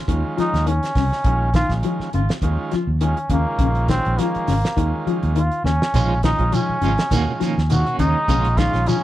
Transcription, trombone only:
0.39 0.69 D#4 loud
0.68 1.55 C#4 medium
1.55 1.73 F4 medium
3.03 3.29 C#4 medium
3.32 3.86 A#3 medium
3.90 4.21 C4 loud
4.20 5.07 A#3 medium
5.37 5.64 F4 medium
5.65 6.20 C#4 medium
6.24 6.56 D#4 loud
6.54 7.41 C#4 medium
7.71 7.98 F#4 medium
8.00 8.59 D#4 loud
8.57 8.90 F4 loud
8.88 9.03 C#4 medium

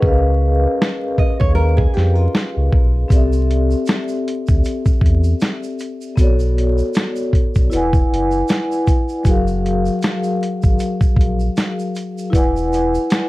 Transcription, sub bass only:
0.03 0.67 C#2 loud
1.42 1.87 D#2 medium
1.97 2.28 F2 medium
2.57 2.70 C#2 medium
2.73 3.05 B1 medium
3.11 3.75 C2 loud
4.50 4.62 D2 medium
5.02 5.34 E2 medium
6.18 6.82 B1 loud
7.56 7.70 B1 medium
7.73 8.04 E1 loud
8.12 8.43 F#1 medium
9.26 9.90 F#1 loud
10.64 10.77 G#1 medium
11.17 11.49 A#1 medium
12.34 12.98 E1 loud

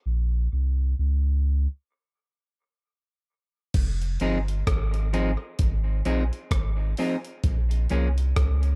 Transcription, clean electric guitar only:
4.21 4.38 F3 medium
4.21 4.38 C4 medium
4.21 4.38 D#4 loud
4.21 4.38 G#4 medium
5.13 5.30 F3 medium
5.13 5.30 C4 medium
5.13 5.30 D#4 medium
5.13 5.30 G#4 medium
6.05 6.22 F3 medium
6.05 6.22 C4 medium
6.05 6.23 D#4 medium
6.05 6.23 G#4 medium
6.99 7.15 F3 medium
6.99 7.15 C4 medium
6.99 7.15 D#4 medium
6.99 7.16 G#4 medium
7.90 8.07 F3 medium
7.90 8.07 A#3 medium
7.90 8.07 C#4 medium
7.90 8.08 G#4 medium

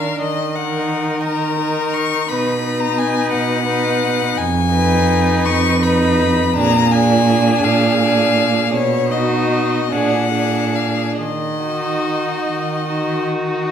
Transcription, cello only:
0.21 1.12 D#3 soft
1.25 2.17 D#3 soft
2.30 3.20 B2 soft
3.33 4.25 B2 medium
4.38 5.32 F2 medium
5.45 6.42 F2 medium
6.56 7.52 A#2 medium
7.64 8.60 A#2 medium
8.73 9.77 B2 medium
9.92 11.03 A#2 soft
11.20 12.32 D#3 soft
12.47 13.59 D#3 soft

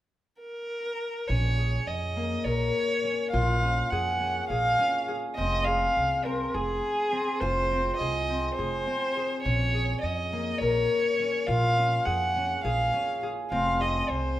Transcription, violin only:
0.40 1.29 A#4 medium
1.28 1.88 C#5 medium
1.87 2.46 D#5 medium
2.44 3.30 C#5 medium
3.31 3.91 F5 medium
3.90 4.48 F#5 medium
4.49 5.11 F5 medium
5.35 5.66 D#5 medium
5.65 6.26 F5 medium
6.25 6.55 A#4 medium
6.54 7.41 G#4 medium
7.40 7.96 C5 medium
7.96 8.52 D#5 medium
8.54 9.40 C5 medium
9.42 9.98 C#5 medium
10.01 10.60 D#5 medium
10.58 11.48 C#5 medium
11.47 12.07 F5 medium
12.05 12.63 F#5 medium
12.63 13.26 F5 medium
13.51 13.82 F5 medium
13.81 14.11 D#5 medium
14.10 14.40 C5 medium

